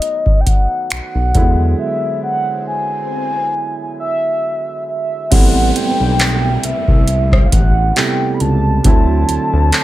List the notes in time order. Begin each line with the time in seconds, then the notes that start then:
Already playing: D#3 F#3 A3 B3 D#4 D#5, swell
0.02 closed hi-hat
0.26 kick
0.41 G5
0.46 F#5, kick, closed hi-hat
0.90 B1 F#5, finger snap, closed hi-hat
1.15 B1
1.33 E2 D3 F#3 G#3 B3 E4, kick, closed hi-hat
1.79 E5
2.23 F#5
2.67 G#5
4.00 E5
4.88 E5
5.31 A1 G3 A3 B3 C4 E4 F#5, kick, closed hi-hat, crash, downlifter
5.76 G5, closed hi-hat
6.00 B1
6.20 clap, closed hi-hat
6.63 C2 E5, closed hi-hat
6.88 C2, kick
7.08 closed hi-hat
7.32 kick, cross-stick
7.46 F5
7.52 A1 F#5, kick, closed hi-hat
7.96 C3 G3 A3 B3 E4 G5, clap, closed hi-hat
8.34 B5
8.40 C#2 A5, closed hi-hat
8.83 D2 D3 F#3 A3 C4 E4 A5, kick, closed hi-hat
9.29 D2, closed hi-hat
9.53 D2
9.72 clap, closed hi-hat